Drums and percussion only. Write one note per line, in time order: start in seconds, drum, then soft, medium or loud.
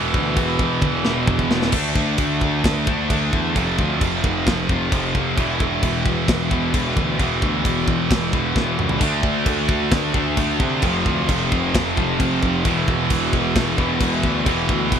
0.14 kick medium
0.36 kick medium
0.36 crash medium
0.59 kick medium
0.81 kick medium
0.81 high tom medium
1.05 snare medium
1.27 kick medium
1.27 mid tom loud
1.39 kick medium
1.51 snare loud
1.62 snare medium
1.72 kick medium
1.72 crash loud
1.72 crash medium
1.96 kick medium
2.18 kick loud
2.18 crash medium
2.41 kick medium
2.64 kick medium
2.64 snare loud
2.64 crash medium
2.87 kick loud
3.10 kick loud
3.10 crash medium
3.33 kick medium
3.56 kick medium
3.56 crash medium
3.79 kick medium
4.01 kick medium
4.01 crash medium
4.24 kick medium
4.47 kick medium
4.47 snare loud
4.47 crash medium
4.69 kick medium
4.92 kick loud
4.92 crash medium
5.15 kick medium
5.38 kick medium
5.38 crash medium
5.60 kick medium
5.83 kick medium
5.83 crash medium
6.06 kick medium
6.28 kick medium
6.28 snare loud
6.28 crash medium
6.51 kick medium
6.74 kick loud
6.74 crash medium
6.97 kick medium
7.20 kick medium
7.20 crash medium
7.42 kick medium
7.65 kick medium
7.65 crash medium
7.88 kick medium
8.11 kick medium
8.11 snare loud
8.11 crash medium
8.33 kick medium
8.56 kick loud
8.56 snare medium
8.79 mid tom loud
8.89 floor tom loud
9.01 kick medium
9.01 splash medium
9.01 crash medium
9.23 kick medium
9.46 kick loud
9.46 crash medium
9.69 kick medium
9.91 kick medium
9.91 snare loud
9.91 crash medium
10.14 kick medium
10.37 kick medium
10.37 crash medium
10.60 kick medium
10.82 kick medium
10.82 crash medium
11.06 kick medium
11.29 kick medium
11.29 crash medium
11.52 kick medium
11.75 kick loud
11.75 snare loud
11.75 crash medium
11.97 kick medium
12.20 kick loud
12.20 crash medium
12.43 kick medium
12.65 kick medium
12.65 crash medium
12.88 kick medium
13.10 kick loud
13.10 crash medium
13.33 kick medium
13.56 kick loud
13.56 snare loud
13.56 crash medium
13.78 kick loud
14.00 kick loud
14.00 crash medium
14.23 kick medium
14.46 kick loud
14.46 crash medium
14.69 kick medium
14.92 kick medium
14.92 crash medium